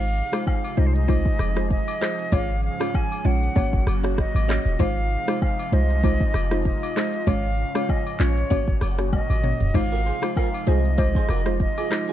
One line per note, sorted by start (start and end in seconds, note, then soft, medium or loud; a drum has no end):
0.00 0.22 G#1 loud
0.00 2.30 C3 medium
0.00 3.52 F3 medium
0.00 2.30 G#3 medium
0.00 2.30 D#4 medium
0.00 3.52 G#4 medium
0.00 0.47 F5 loud
0.00 shaker medium
0.15 shaker medium
0.32 0.74 G#3 medium
0.32 0.74 D#4 medium
0.32 0.74 F4 medium
0.32 0.74 C5 medium
0.32 cross-stick loud
0.32 high agogo medium
0.32 shaker medium
0.46 0.80 F5 medium
0.46 kick loud
0.46 low woodblock medium
0.46 shaker medium
0.64 high agogo medium
0.64 shaker medium
0.77 1.26 C2 loud
0.77 1.06 G#3 medium
0.77 1.06 D#4 medium
0.77 1.06 F4 medium
0.77 1.06 C5 medium
0.77 0.88 D#5 medium
0.77 shaker medium
0.87 0.96 C5 medium
0.94 1.71 D#5 loud
0.94 shaker medium
1.08 1.52 G#3 medium
1.08 1.52 D#4 medium
1.08 1.52 F4 medium
1.08 1.52 C5 loud
1.08 kick loud
1.08 high agogo medium
1.08 shaker medium
1.25 kick loud
1.25 shaker medium
1.39 1.77 F1 medium
1.39 cross-stick medium
1.39 high agogo medium
1.39 shaker medium
1.56 1.73 G#3 medium
1.56 1.73 D#4 medium
1.56 1.73 F4 medium
1.56 1.73 C5 medium
1.56 cross-stick medium
1.56 shaker medium
1.71 2.35 D#5 loud
1.71 kick medium
1.71 shaker medium
1.87 high agogo medium
1.87 shaker soft
2.01 2.21 G#3 medium
2.01 2.21 D#4 medium
2.01 2.21 F4 medium
2.01 2.21 C5 medium
2.01 cross-stick loud
2.01 clap loud
2.01 shaker medium
2.18 shaker loud
2.32 2.70 G#1 loud
2.32 3.55 G#2 medium
2.32 4.77 C#3 medium
2.32 2.52 G#3 medium
2.32 2.52 C#4 medium
2.32 4.77 C#4 medium
2.32 2.52 F4 medium
2.32 2.52 C#5 loud
2.32 2.64 F5 loud
2.32 kick loud
2.32 high agogo medium
2.32 shaker medium
2.50 shaker medium
2.63 2.97 F5 medium
2.63 shaker medium
2.80 3.22 G#3 medium
2.80 3.22 C#4 medium
2.80 3.22 F4 medium
2.80 3.22 C#5 medium
2.80 cross-stick loud
2.80 high agogo medium
2.80 shaker medium
2.94 3.28 G#5 medium
2.94 kick loud
2.94 low woodblock medium
2.94 shaker medium
3.12 high agogo medium
3.12 shaker medium
3.25 3.49 A#1 medium
3.25 3.54 G#3 medium
3.25 3.54 C#4 medium
3.25 3.54 F4 medium
3.25 3.54 C#5 medium
3.25 3.92 F#5 loud
3.25 shaker medium
3.43 shaker medium
3.55 3.80 G#1 loud
3.55 4.78 A#2 medium
3.55 4.78 F#3 medium
3.55 4.00 A#3 medium
3.55 4.00 C#4 medium
3.55 4.00 F#4 medium
3.55 4.78 F#4 medium
3.55 4.00 C#5 loud
3.55 kick loud
3.55 high agogo medium
3.55 shaker medium
3.73 kick loud
3.73 shaker medium
3.87 4.24 F#1 medium
3.87 cross-stick medium
3.87 high agogo medium
3.87 shaker medium
4.03 4.21 A#3 medium
4.03 4.21 C#4 medium
4.03 4.21 F#4 medium
4.03 4.21 C#5 medium
4.03 cross-stick medium
4.03 shaker medium
4.18 4.83 D#5 loud
4.18 kick medium
4.18 cross-stick loud
4.18 shaker medium
4.35 4.59 G#1 medium
4.35 high agogo medium
4.35 shaker soft
4.48 4.68 A#3 medium
4.48 4.68 C#4 medium
4.48 4.68 F#4 medium
4.48 4.68 C#5 medium
4.48 cross-stick loud
4.48 clap loud
4.48 shaker medium
4.66 4.76 D#1 loud
4.66 shaker loud
4.79 5.17 G#1 loud
4.79 7.25 C3 medium
4.79 8.47 F3 medium
4.79 4.99 G#3 loud
4.79 7.25 G#3 medium
4.79 7.25 D#4 medium
4.79 4.99 D#4 medium
4.79 8.47 F4 loud
4.79 4.99 F4 medium
4.79 4.99 C5 loud
4.79 5.42 F5 loud
4.79 kick loud
4.79 high agogo medium
4.79 shaker medium
4.97 shaker medium
5.10 shaker medium
5.28 5.69 G#3 medium
5.28 5.69 D#4 medium
5.28 5.69 F4 medium
5.28 5.69 C5 medium
5.28 cross-stick loud
5.28 high agogo medium
5.28 shaker medium
5.41 5.75 F5 medium
5.41 kick loud
5.41 low woodblock medium
5.41 shaker medium
5.59 high agogo medium
5.59 shaker medium
5.72 6.20 C2 loud
5.72 6.01 G#3 medium
5.72 6.01 D#4 medium
5.72 6.01 F4 medium
5.72 6.01 C5 loud
5.72 6.66 D#5 loud
5.72 shaker medium
5.90 shaker medium
6.03 6.47 G#3 loud
6.03 6.47 D#4 medium
6.03 6.47 F4 medium
6.03 6.47 C5 loud
6.03 kick loud
6.03 high agogo medium
6.03 shaker medium
6.20 kick loud
6.20 shaker medium
6.34 6.72 F1 loud
6.34 cross-stick medium
6.34 high agogo medium
6.34 shaker medium
6.51 6.68 G#3 medium
6.51 6.68 D#4 medium
6.51 6.68 F4 medium
6.51 6.68 C5 medium
6.51 cross-stick medium
6.51 shaker medium
6.65 7.30 D#5 loud
6.65 kick medium
6.65 shaker medium
6.82 high agogo medium
6.82 shaker medium
6.96 7.16 G#3 medium
6.96 7.16 D#4 medium
6.96 7.16 F4 medium
6.96 7.16 C5 medium
6.96 cross-stick loud
6.96 clap loud
6.96 shaker medium
7.13 shaker loud
7.27 7.64 G#1 loud
7.27 8.50 G#2 medium
7.27 8.50 C#3 medium
7.27 7.46 G#3 loud
7.27 7.47 C#4 medium
7.27 8.49 C#4 medium
7.27 7.47 F4 medium
7.27 7.47 C#5 loud
7.27 7.92 F5 loud
7.27 kick loud
7.27 high agogo medium
7.27 shaker medium
7.45 shaker medium
7.57 shaker medium
7.75 8.16 G#3 medium
7.75 8.17 C#4 medium
7.75 8.17 F4 medium
7.75 8.17 C#5 medium
7.75 cross-stick loud
7.75 high agogo medium
7.75 shaker loud
7.88 8.23 D#5 medium
7.88 kick loud
7.88 low woodblock medium
7.88 shaker medium
8.06 high agogo medium
8.06 shaker medium
8.19 8.44 A#1 medium
8.19 8.48 G#3 medium
8.19 8.49 C#4 medium
8.19 8.49 F4 medium
8.19 8.49 C#5 medium
8.19 8.87 C#5 loud
8.19 clap medium
8.19 shaker medium
8.37 shaker loud
8.50 8.75 G#1 loud
8.50 9.73 A#2 medium
8.50 9.73 C#3 medium
8.50 9.73 F#3 medium
8.50 8.94 A#3 medium
8.50 8.94 C#4 medium
8.50 9.73 C#4 medium
8.50 8.95 F#4 medium
8.50 9.73 F#4 medium
8.50 8.95 C#5 loud
8.50 kick loud
8.50 high agogo medium
8.50 shaker medium
8.68 kick loud
8.68 shaker medium
8.81 9.19 F#1 medium
8.81 cross-stick medium
8.81 open hi-hat medium
8.81 high agogo medium
8.81 shaker medium
8.98 9.15 A#3 medium
8.98 9.16 C#4 medium
8.98 9.16 F#4 medium
8.98 9.16 C#5 medium
8.98 cross-stick medium
8.98 shaker medium
9.13 9.77 D#5 loud
9.13 kick medium
9.13 high tom medium
9.13 low woodblock medium
9.13 shaker medium
9.29 9.54 G#1 medium
9.29 high agogo medium
9.29 shaker soft
9.43 9.63 A#3 medium
9.43 9.63 C#4 medium
9.43 9.63 F#4 medium
9.43 9.63 C#5 medium
9.43 mid tom loud
9.43 shaker medium
9.60 9.72 D#1 loud
9.60 floor tom loud
9.60 shaker loud
9.74 10.12 G#1 loud
9.74 12.13 C3 medium
9.74 12.13 F3 medium
9.74 12.13 G#3 medium
9.74 9.94 G#3 loud
9.74 12.13 D#4 medium
9.74 9.94 D#4 medium
9.74 12.13 F4 loud
9.74 9.94 F4 medium
9.74 9.94 C5 loud
9.74 10.37 F5 loud
9.74 kick loud
9.74 crash medium
9.74 high agogo medium
9.92 10.01 F#4 medium
9.92 10.00 A#4 medium
9.92 shaker medium
10.05 10.17 G#4 medium
10.05 10.16 C5 medium
10.05 shaker medium
10.22 10.64 G#3 medium
10.22 10.64 D#4 medium
10.22 10.64 F4 medium
10.22 10.64 C5 medium
10.22 cross-stick loud
10.22 high agogo medium
10.22 shaker medium
10.36 10.48 F4 medium
10.36 10.47 A#4 medium
10.36 10.70 F5 loud
10.36 kick loud
10.36 low woodblock medium
10.36 shaker medium
10.54 high agogo medium
10.54 shaker medium
10.67 11.15 C2 loud
10.67 10.96 G#3 medium
10.67 10.96 D#4 medium
10.67 10.96 F4 medium
10.67 10.79 F4 medium
10.67 10.78 G#4 medium
10.67 10.96 C5 medium
10.67 11.61 D#5 loud
10.67 shaker medium
10.84 shaker medium
10.98 11.42 G#3 loud
10.98 11.42 D#4 medium
10.98 11.42 F4 medium
10.98 11.42 C5 loud
10.98 kick loud
10.98 high agogo medium
10.98 shaker medium
11.15 11.25 G#4 medium
11.15 11.24 C5 medium
11.15 kick loud
11.15 shaker medium
11.29 11.67 F1 medium
11.29 11.40 F#4 medium
11.29 11.40 A#4 medium
11.29 cross-stick medium
11.29 high agogo medium
11.29 shaker medium
11.46 11.63 G#3 medium
11.46 11.63 D#4 medium
11.46 11.63 F4 medium
11.46 11.63 C5 medium
11.46 cross-stick medium
11.46 shaker medium
11.60 12.13 D#5 loud
11.60 kick medium
11.60 shaker medium
11.76 11.87 F4 medium
11.76 11.86 G#4 medium
11.76 high agogo medium
11.76 shaker medium
11.91 12.10 G#3 medium
11.91 12.10 D#4 medium
11.91 12.10 F4 medium
11.91 12.11 C5 medium
11.91 cross-stick loud
11.91 clap loud
11.91 shaker medium
12.07 12.13 F4 medium
12.07 12.13 G#4 medium
12.07 shaker loud